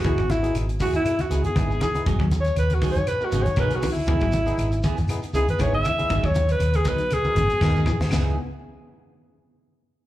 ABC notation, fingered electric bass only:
X:1
M:4/4
L:1/16
Q:"Swing 16ths" 1/4=119
K:C#dor
V:1 name="Fingered electric bass" clef=bass
C,, G,,,3 G,,,2 z4 C,, z G,,,2 z2 | G,,, D,,3 D,,2 z4 G,,, z B,,,2 z2 | C,, G,,,3 G,,,2 z4 C,, z G,,,2 z2 | G,,, D,,3 D,,2 z4 G,,, z D,,2 z2 |
C,,2 z12 z2 |]